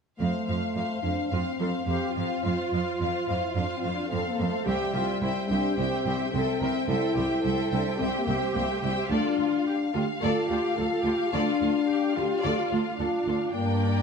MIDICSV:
0, 0, Header, 1, 6, 480
1, 0, Start_track
1, 0, Key_signature, -1, "major"
1, 0, Tempo, 561798
1, 173, Time_signature, 4, 2, 24, 8
1, 2573, Tempo, 555042
1, 12097, End_track
2, 0, Start_track
2, 0, Title_t, "Violin section"
2, 0, Program_c, 0, 48
2, 166, Note_on_c, 0, 77, 37
2, 388, Note_off_c, 0, 77, 0
2, 398, Note_on_c, 0, 77, 36
2, 626, Note_off_c, 0, 77, 0
2, 636, Note_on_c, 0, 77, 36
2, 861, Note_off_c, 0, 77, 0
2, 871, Note_on_c, 0, 77, 38
2, 1101, Note_off_c, 0, 77, 0
2, 1111, Note_on_c, 0, 77, 40
2, 1354, Note_off_c, 0, 77, 0
2, 1364, Note_on_c, 0, 77, 34
2, 1597, Note_off_c, 0, 77, 0
2, 1607, Note_on_c, 0, 77, 36
2, 1846, Note_off_c, 0, 77, 0
2, 1856, Note_on_c, 0, 77, 34
2, 2081, Note_off_c, 0, 77, 0
2, 2091, Note_on_c, 0, 77, 40
2, 2328, Note_off_c, 0, 77, 0
2, 2341, Note_on_c, 0, 77, 38
2, 2569, Note_off_c, 0, 77, 0
2, 2579, Note_on_c, 0, 77, 41
2, 2801, Note_off_c, 0, 77, 0
2, 2811, Note_on_c, 0, 77, 38
2, 3033, Note_off_c, 0, 77, 0
2, 3043, Note_on_c, 0, 77, 43
2, 3278, Note_off_c, 0, 77, 0
2, 3288, Note_on_c, 0, 77, 39
2, 3517, Note_off_c, 0, 77, 0
2, 3528, Note_on_c, 0, 77, 37
2, 3763, Note_off_c, 0, 77, 0
2, 3772, Note_on_c, 0, 77, 36
2, 4005, Note_off_c, 0, 77, 0
2, 4019, Note_on_c, 0, 79, 44
2, 4229, Note_off_c, 0, 79, 0
2, 4239, Note_on_c, 0, 79, 38
2, 4473, Note_off_c, 0, 79, 0
2, 4483, Note_on_c, 0, 79, 42
2, 4700, Note_off_c, 0, 79, 0
2, 4710, Note_on_c, 0, 79, 40
2, 4944, Note_off_c, 0, 79, 0
2, 4955, Note_on_c, 0, 79, 45
2, 5196, Note_off_c, 0, 79, 0
2, 5212, Note_on_c, 0, 79, 41
2, 5431, Note_off_c, 0, 79, 0
2, 5442, Note_on_c, 0, 79, 40
2, 5672, Note_off_c, 0, 79, 0
2, 5682, Note_on_c, 0, 79, 42
2, 5920, Note_off_c, 0, 79, 0
2, 5936, Note_on_c, 0, 79, 43
2, 6160, Note_off_c, 0, 79, 0
2, 6170, Note_on_c, 0, 79, 43
2, 6385, Note_off_c, 0, 79, 0
2, 6395, Note_on_c, 0, 79, 45
2, 6623, Note_off_c, 0, 79, 0
2, 6633, Note_on_c, 0, 79, 44
2, 6867, Note_off_c, 0, 79, 0
2, 6877, Note_on_c, 0, 79, 47
2, 7104, Note_off_c, 0, 79, 0
2, 7115, Note_on_c, 0, 79, 44
2, 7334, Note_off_c, 0, 79, 0
2, 7344, Note_on_c, 0, 79, 46
2, 7585, Note_off_c, 0, 79, 0
2, 7596, Note_on_c, 0, 79, 45
2, 7839, Note_on_c, 0, 77, 48
2, 7843, Note_off_c, 0, 79, 0
2, 11647, Note_off_c, 0, 77, 0
2, 11682, Note_on_c, 0, 79, 46
2, 12097, Note_off_c, 0, 79, 0
2, 12097, End_track
3, 0, Start_track
3, 0, Title_t, "Violin section"
3, 0, Program_c, 1, 48
3, 170, Note_on_c, 1, 72, 42
3, 173, Note_on_c, 1, 77, 40
3, 399, Note_off_c, 1, 72, 0
3, 400, Note_off_c, 1, 77, 0
3, 409, Note_on_c, 1, 72, 34
3, 410, Note_on_c, 1, 77, 34
3, 644, Note_off_c, 1, 72, 0
3, 646, Note_off_c, 1, 77, 0
3, 654, Note_on_c, 1, 72, 40
3, 656, Note_on_c, 1, 77, 38
3, 877, Note_off_c, 1, 72, 0
3, 881, Note_off_c, 1, 77, 0
3, 888, Note_on_c, 1, 72, 34
3, 891, Note_on_c, 1, 77, 34
3, 1114, Note_off_c, 1, 77, 0
3, 1118, Note_off_c, 1, 72, 0
3, 1124, Note_on_c, 1, 77, 35
3, 1128, Note_on_c, 1, 72, 37
3, 1353, Note_off_c, 1, 72, 0
3, 1353, Note_off_c, 1, 77, 0
3, 1363, Note_on_c, 1, 72, 37
3, 1363, Note_on_c, 1, 77, 37
3, 1583, Note_off_c, 1, 72, 0
3, 1591, Note_off_c, 1, 77, 0
3, 1594, Note_on_c, 1, 72, 38
3, 1601, Note_on_c, 1, 77, 37
3, 1832, Note_off_c, 1, 72, 0
3, 1835, Note_off_c, 1, 77, 0
3, 1842, Note_on_c, 1, 72, 36
3, 1845, Note_on_c, 1, 77, 38
3, 2080, Note_off_c, 1, 77, 0
3, 2081, Note_off_c, 1, 72, 0
3, 2090, Note_on_c, 1, 77, 39
3, 2092, Note_on_c, 1, 72, 42
3, 2328, Note_off_c, 1, 77, 0
3, 2329, Note_off_c, 1, 72, 0
3, 2337, Note_on_c, 1, 72, 38
3, 2339, Note_on_c, 1, 77, 37
3, 2557, Note_off_c, 1, 72, 0
3, 2560, Note_off_c, 1, 77, 0
3, 2567, Note_on_c, 1, 72, 42
3, 2570, Note_on_c, 1, 77, 41
3, 2796, Note_off_c, 1, 72, 0
3, 2798, Note_off_c, 1, 77, 0
3, 2807, Note_on_c, 1, 72, 36
3, 2809, Note_on_c, 1, 77, 38
3, 3044, Note_off_c, 1, 77, 0
3, 3046, Note_off_c, 1, 72, 0
3, 3055, Note_on_c, 1, 72, 39
3, 3055, Note_on_c, 1, 77, 38
3, 3286, Note_off_c, 1, 72, 0
3, 3286, Note_off_c, 1, 77, 0
3, 3297, Note_on_c, 1, 72, 40
3, 3297, Note_on_c, 1, 77, 39
3, 3512, Note_off_c, 1, 77, 0
3, 3513, Note_off_c, 1, 72, 0
3, 3522, Note_on_c, 1, 77, 40
3, 3524, Note_on_c, 1, 72, 41
3, 3751, Note_off_c, 1, 77, 0
3, 3755, Note_off_c, 1, 72, 0
3, 3761, Note_on_c, 1, 77, 41
3, 3765, Note_on_c, 1, 72, 40
3, 3999, Note_off_c, 1, 72, 0
3, 3999, Note_off_c, 1, 77, 0
3, 4004, Note_on_c, 1, 76, 46
3, 4009, Note_on_c, 1, 72, 45
3, 4233, Note_off_c, 1, 72, 0
3, 4233, Note_off_c, 1, 76, 0
3, 4243, Note_on_c, 1, 72, 39
3, 4243, Note_on_c, 1, 76, 38
3, 4482, Note_off_c, 1, 72, 0
3, 4482, Note_off_c, 1, 76, 0
3, 4493, Note_on_c, 1, 76, 43
3, 4496, Note_on_c, 1, 72, 44
3, 4717, Note_off_c, 1, 72, 0
3, 4718, Note_off_c, 1, 76, 0
3, 4727, Note_on_c, 1, 72, 42
3, 4728, Note_on_c, 1, 76, 40
3, 4960, Note_off_c, 1, 72, 0
3, 4964, Note_off_c, 1, 76, 0
3, 4970, Note_on_c, 1, 72, 42
3, 4974, Note_on_c, 1, 76, 43
3, 5204, Note_off_c, 1, 72, 0
3, 5206, Note_off_c, 1, 76, 0
3, 5217, Note_on_c, 1, 72, 43
3, 5222, Note_on_c, 1, 76, 43
3, 5445, Note_off_c, 1, 76, 0
3, 5447, Note_off_c, 1, 72, 0
3, 5455, Note_on_c, 1, 76, 42
3, 5459, Note_on_c, 1, 72, 41
3, 5683, Note_off_c, 1, 72, 0
3, 5685, Note_off_c, 1, 76, 0
3, 5694, Note_on_c, 1, 72, 44
3, 5695, Note_on_c, 1, 76, 46
3, 5913, Note_off_c, 1, 76, 0
3, 5916, Note_off_c, 1, 72, 0
3, 5923, Note_on_c, 1, 76, 48
3, 5926, Note_on_c, 1, 72, 46
3, 6150, Note_off_c, 1, 76, 0
3, 6152, Note_off_c, 1, 72, 0
3, 6160, Note_on_c, 1, 76, 41
3, 6162, Note_on_c, 1, 72, 42
3, 6386, Note_off_c, 1, 72, 0
3, 6388, Note_off_c, 1, 76, 0
3, 6396, Note_on_c, 1, 72, 45
3, 6399, Note_on_c, 1, 76, 47
3, 6627, Note_off_c, 1, 72, 0
3, 6627, Note_off_c, 1, 76, 0
3, 6637, Note_on_c, 1, 72, 42
3, 6638, Note_on_c, 1, 76, 42
3, 6876, Note_off_c, 1, 72, 0
3, 6876, Note_off_c, 1, 76, 0
3, 6889, Note_on_c, 1, 72, 44
3, 6890, Note_on_c, 1, 76, 45
3, 7108, Note_off_c, 1, 72, 0
3, 7113, Note_off_c, 1, 76, 0
3, 7118, Note_on_c, 1, 72, 44
3, 7124, Note_on_c, 1, 76, 44
3, 7352, Note_off_c, 1, 76, 0
3, 7356, Note_off_c, 1, 72, 0
3, 7363, Note_on_c, 1, 76, 44
3, 7364, Note_on_c, 1, 72, 44
3, 7597, Note_off_c, 1, 72, 0
3, 7600, Note_off_c, 1, 76, 0
3, 7608, Note_on_c, 1, 72, 48
3, 7610, Note_on_c, 1, 76, 49
3, 7850, Note_off_c, 1, 72, 0
3, 7851, Note_off_c, 1, 76, 0
3, 7854, Note_on_c, 1, 69, 60
3, 7855, Note_on_c, 1, 74, 53
3, 8079, Note_off_c, 1, 69, 0
3, 8079, Note_off_c, 1, 74, 0
3, 8088, Note_on_c, 1, 65, 38
3, 8091, Note_on_c, 1, 69, 38
3, 8157, Note_off_c, 1, 65, 0
3, 8160, Note_off_c, 1, 69, 0
3, 8565, Note_on_c, 1, 69, 44
3, 8569, Note_on_c, 1, 65, 38
3, 8635, Note_off_c, 1, 69, 0
3, 8638, Note_off_c, 1, 65, 0
3, 8810, Note_on_c, 1, 69, 51
3, 8813, Note_on_c, 1, 74, 51
3, 9035, Note_off_c, 1, 69, 0
3, 9036, Note_off_c, 1, 74, 0
3, 9056, Note_on_c, 1, 69, 48
3, 9059, Note_on_c, 1, 65, 48
3, 9125, Note_off_c, 1, 69, 0
3, 9129, Note_off_c, 1, 65, 0
3, 9293, Note_on_c, 1, 69, 40
3, 9294, Note_off_c, 1, 69, 0
3, 9294, Note_on_c, 1, 69, 40
3, 9363, Note_off_c, 1, 69, 0
3, 9526, Note_on_c, 1, 69, 46
3, 9527, Note_on_c, 1, 65, 45
3, 9595, Note_off_c, 1, 69, 0
3, 9596, Note_off_c, 1, 65, 0
3, 9770, Note_on_c, 1, 69, 54
3, 9771, Note_on_c, 1, 74, 53
3, 9995, Note_off_c, 1, 69, 0
3, 9995, Note_off_c, 1, 74, 0
3, 10015, Note_on_c, 1, 69, 36
3, 10018, Note_on_c, 1, 65, 36
3, 10084, Note_off_c, 1, 69, 0
3, 10087, Note_off_c, 1, 65, 0
3, 10497, Note_on_c, 1, 65, 38
3, 10497, Note_on_c, 1, 69, 38
3, 10566, Note_off_c, 1, 69, 0
3, 10567, Note_off_c, 1, 65, 0
3, 10720, Note_on_c, 1, 74, 57
3, 10724, Note_on_c, 1, 69, 54
3, 10948, Note_off_c, 1, 74, 0
3, 10950, Note_off_c, 1, 69, 0
3, 10960, Note_on_c, 1, 69, 43
3, 10964, Note_on_c, 1, 65, 40
3, 11029, Note_off_c, 1, 69, 0
3, 11033, Note_off_c, 1, 65, 0
3, 11209, Note_on_c, 1, 69, 42
3, 11213, Note_off_c, 1, 69, 0
3, 11213, Note_on_c, 1, 69, 41
3, 11282, Note_off_c, 1, 69, 0
3, 11453, Note_on_c, 1, 69, 45
3, 11454, Note_on_c, 1, 65, 39
3, 11522, Note_off_c, 1, 69, 0
3, 11524, Note_off_c, 1, 65, 0
3, 11690, Note_on_c, 1, 74, 48
3, 11694, Note_on_c, 1, 70, 50
3, 12097, Note_off_c, 1, 70, 0
3, 12097, Note_off_c, 1, 74, 0
3, 12097, End_track
4, 0, Start_track
4, 0, Title_t, "Viola section"
4, 0, Program_c, 2, 48
4, 1132, Note_on_c, 2, 65, 43
4, 1200, Note_off_c, 2, 65, 0
4, 1368, Note_on_c, 2, 69, 46
4, 1436, Note_off_c, 2, 69, 0
4, 1610, Note_on_c, 2, 67, 43
4, 1847, Note_off_c, 2, 67, 0
4, 1850, Note_on_c, 2, 65, 47
4, 3498, Note_off_c, 2, 65, 0
4, 3527, Note_on_c, 2, 69, 48
4, 3996, Note_off_c, 2, 69, 0
4, 3997, Note_on_c, 2, 67, 49
4, 4243, Note_off_c, 2, 67, 0
4, 4248, Note_on_c, 2, 65, 47
4, 4487, Note_on_c, 2, 64, 46
4, 4490, Note_off_c, 2, 65, 0
4, 4556, Note_off_c, 2, 64, 0
4, 4732, Note_on_c, 2, 67, 53
4, 5434, Note_off_c, 2, 67, 0
4, 5459, Note_on_c, 2, 69, 52
4, 5688, Note_off_c, 2, 69, 0
4, 5689, Note_on_c, 2, 70, 51
4, 5758, Note_off_c, 2, 70, 0
4, 5928, Note_on_c, 2, 69, 60
4, 6162, Note_on_c, 2, 67, 50
4, 6163, Note_off_c, 2, 69, 0
4, 6401, Note_on_c, 2, 69, 57
4, 6404, Note_off_c, 2, 67, 0
4, 6873, Note_off_c, 2, 69, 0
4, 6886, Note_on_c, 2, 67, 58
4, 7853, Note_on_c, 2, 65, 59
4, 7855, Note_off_c, 2, 67, 0
4, 8334, Note_off_c, 2, 65, 0
4, 8334, Note_on_c, 2, 67, 52
4, 8403, Note_off_c, 2, 67, 0
4, 8569, Note_on_c, 2, 65, 51
4, 8638, Note_off_c, 2, 65, 0
4, 8806, Note_on_c, 2, 69, 60
4, 9043, Note_on_c, 2, 67, 54
4, 9045, Note_off_c, 2, 69, 0
4, 9279, Note_on_c, 2, 69, 57
4, 9283, Note_off_c, 2, 67, 0
4, 9521, Note_on_c, 2, 67, 55
4, 9525, Note_off_c, 2, 69, 0
4, 9764, Note_on_c, 2, 65, 54
4, 9767, Note_off_c, 2, 67, 0
4, 10239, Note_off_c, 2, 65, 0
4, 10252, Note_on_c, 2, 67, 53
4, 10487, Note_off_c, 2, 67, 0
4, 10491, Note_on_c, 2, 65, 55
4, 11209, Note_off_c, 2, 65, 0
4, 11214, Note_on_c, 2, 62, 53
4, 12097, Note_off_c, 2, 62, 0
4, 12097, End_track
5, 0, Start_track
5, 0, Title_t, "French horn section"
5, 0, Program_c, 3, 60
5, 166, Note_on_c, 3, 57, 56
5, 855, Note_off_c, 3, 57, 0
5, 879, Note_on_c, 3, 62, 58
5, 1120, Note_off_c, 3, 62, 0
5, 1126, Note_on_c, 3, 60, 51
5, 1579, Note_off_c, 3, 60, 0
5, 1589, Note_on_c, 3, 60, 54
5, 2076, Note_off_c, 3, 60, 0
5, 2091, Note_on_c, 3, 65, 68
5, 2807, Note_on_c, 3, 64, 60
5, 2811, Note_off_c, 3, 65, 0
5, 3046, Note_off_c, 3, 64, 0
5, 3060, Note_on_c, 3, 62, 62
5, 3130, Note_off_c, 3, 62, 0
5, 3223, Note_on_c, 3, 60, 53
5, 3293, Note_off_c, 3, 60, 0
5, 3372, Note_on_c, 3, 62, 57
5, 3514, Note_on_c, 3, 60, 54
5, 3528, Note_off_c, 3, 62, 0
5, 3678, Note_off_c, 3, 60, 0
5, 3681, Note_on_c, 3, 58, 56
5, 3834, Note_on_c, 3, 57, 59
5, 3845, Note_off_c, 3, 58, 0
5, 3993, Note_on_c, 3, 55, 62
5, 3997, Note_off_c, 3, 57, 0
5, 4708, Note_off_c, 3, 55, 0
5, 4721, Note_on_c, 3, 62, 62
5, 4955, Note_on_c, 3, 60, 59
5, 4965, Note_off_c, 3, 62, 0
5, 5420, Note_off_c, 3, 60, 0
5, 5431, Note_on_c, 3, 60, 62
5, 5909, Note_off_c, 3, 60, 0
5, 5924, Note_on_c, 3, 64, 74
5, 6630, Note_off_c, 3, 64, 0
5, 6646, Note_on_c, 3, 62, 66
5, 6754, Note_off_c, 3, 62, 0
5, 6878, Note_on_c, 3, 60, 75
5, 6951, Note_off_c, 3, 60, 0
5, 7044, Note_on_c, 3, 58, 67
5, 7198, Note_on_c, 3, 60, 65
5, 7200, Note_off_c, 3, 58, 0
5, 7271, Note_off_c, 3, 60, 0
5, 7353, Note_on_c, 3, 58, 64
5, 7428, Note_off_c, 3, 58, 0
5, 7513, Note_on_c, 3, 57, 61
5, 7681, Note_off_c, 3, 57, 0
5, 7682, Note_on_c, 3, 55, 63
5, 7758, Note_off_c, 3, 55, 0
5, 7866, Note_on_c, 3, 62, 74
5, 8565, Note_off_c, 3, 62, 0
5, 8571, Note_on_c, 3, 67, 75
5, 8680, Note_off_c, 3, 67, 0
5, 8802, Note_on_c, 3, 65, 65
5, 9277, Note_off_c, 3, 65, 0
5, 9292, Note_on_c, 3, 65, 69
5, 9763, Note_off_c, 3, 65, 0
5, 9777, Note_on_c, 3, 62, 73
5, 10480, Note_off_c, 3, 62, 0
5, 10499, Note_on_c, 3, 67, 70
5, 10727, Note_on_c, 3, 65, 66
5, 10730, Note_off_c, 3, 67, 0
5, 11194, Note_off_c, 3, 65, 0
5, 11204, Note_on_c, 3, 65, 67
5, 11677, Note_off_c, 3, 65, 0
5, 11688, Note_on_c, 3, 58, 66
5, 12097, Note_off_c, 3, 58, 0
5, 12097, End_track
6, 0, Start_track
6, 0, Title_t, "Cello section"
6, 0, Program_c, 4, 48
6, 174, Note_on_c, 4, 41, 45
6, 243, Note_off_c, 4, 41, 0
6, 420, Note_on_c, 4, 41, 41
6, 488, Note_off_c, 4, 41, 0
6, 653, Note_on_c, 4, 41, 39
6, 721, Note_off_c, 4, 41, 0
6, 895, Note_on_c, 4, 41, 39
6, 963, Note_off_c, 4, 41, 0
6, 1132, Note_on_c, 4, 41, 43
6, 1200, Note_off_c, 4, 41, 0
6, 1367, Note_on_c, 4, 41, 40
6, 1435, Note_off_c, 4, 41, 0
6, 1605, Note_on_c, 4, 41, 39
6, 1674, Note_off_c, 4, 41, 0
6, 1850, Note_on_c, 4, 41, 40
6, 1918, Note_off_c, 4, 41, 0
6, 2093, Note_on_c, 4, 41, 46
6, 2161, Note_off_c, 4, 41, 0
6, 2333, Note_on_c, 4, 41, 41
6, 2402, Note_off_c, 4, 41, 0
6, 2571, Note_on_c, 4, 41, 41
6, 2640, Note_off_c, 4, 41, 0
6, 2809, Note_on_c, 4, 41, 40
6, 2878, Note_off_c, 4, 41, 0
6, 3047, Note_on_c, 4, 41, 45
6, 3117, Note_off_c, 4, 41, 0
6, 3296, Note_on_c, 4, 41, 42
6, 3366, Note_off_c, 4, 41, 0
6, 3532, Note_on_c, 4, 41, 45
6, 3601, Note_off_c, 4, 41, 0
6, 3772, Note_on_c, 4, 41, 45
6, 3841, Note_off_c, 4, 41, 0
6, 4008, Note_on_c, 4, 36, 51
6, 4077, Note_off_c, 4, 36, 0
6, 4248, Note_on_c, 4, 36, 46
6, 4317, Note_off_c, 4, 36, 0
6, 4496, Note_on_c, 4, 36, 45
6, 4565, Note_off_c, 4, 36, 0
6, 4741, Note_on_c, 4, 36, 45
6, 4810, Note_off_c, 4, 36, 0
6, 4976, Note_on_c, 4, 36, 51
6, 5045, Note_off_c, 4, 36, 0
6, 5216, Note_on_c, 4, 36, 46
6, 5285, Note_off_c, 4, 36, 0
6, 5456, Note_on_c, 4, 36, 47
6, 5526, Note_off_c, 4, 36, 0
6, 5701, Note_on_c, 4, 36, 47
6, 5770, Note_off_c, 4, 36, 0
6, 5937, Note_on_c, 4, 36, 54
6, 6006, Note_off_c, 4, 36, 0
6, 6173, Note_on_c, 4, 36, 50
6, 6243, Note_off_c, 4, 36, 0
6, 6416, Note_on_c, 4, 36, 45
6, 6485, Note_off_c, 4, 36, 0
6, 6649, Note_on_c, 4, 36, 46
6, 6718, Note_off_c, 4, 36, 0
6, 6898, Note_on_c, 4, 36, 53
6, 6968, Note_off_c, 4, 36, 0
6, 7131, Note_on_c, 4, 36, 50
6, 7200, Note_off_c, 4, 36, 0
6, 7371, Note_on_c, 4, 36, 50
6, 7440, Note_off_c, 4, 36, 0
6, 7610, Note_on_c, 4, 36, 50
6, 7679, Note_off_c, 4, 36, 0
6, 7854, Note_on_c, 4, 38, 62
6, 7923, Note_off_c, 4, 38, 0
6, 8094, Note_on_c, 4, 38, 45
6, 8163, Note_off_c, 4, 38, 0
6, 8580, Note_on_c, 4, 38, 39
6, 8649, Note_off_c, 4, 38, 0
6, 8813, Note_on_c, 4, 38, 59
6, 8882, Note_off_c, 4, 38, 0
6, 9053, Note_on_c, 4, 38, 44
6, 9122, Note_off_c, 4, 38, 0
6, 9291, Note_on_c, 4, 38, 43
6, 9360, Note_off_c, 4, 38, 0
6, 9527, Note_on_c, 4, 38, 43
6, 9596, Note_off_c, 4, 38, 0
6, 9773, Note_on_c, 4, 38, 61
6, 9842, Note_off_c, 4, 38, 0
6, 10014, Note_on_c, 4, 38, 41
6, 10084, Note_off_c, 4, 38, 0
6, 10494, Note_on_c, 4, 38, 40
6, 10563, Note_off_c, 4, 38, 0
6, 10729, Note_on_c, 4, 38, 60
6, 10798, Note_off_c, 4, 38, 0
6, 10971, Note_on_c, 4, 38, 41
6, 11040, Note_off_c, 4, 38, 0
6, 11206, Note_on_c, 4, 38, 40
6, 11275, Note_off_c, 4, 38, 0
6, 11451, Note_on_c, 4, 38, 39
6, 11520, Note_off_c, 4, 38, 0
6, 11687, Note_on_c, 4, 43, 52
6, 12097, Note_off_c, 4, 43, 0
6, 12097, End_track
0, 0, End_of_file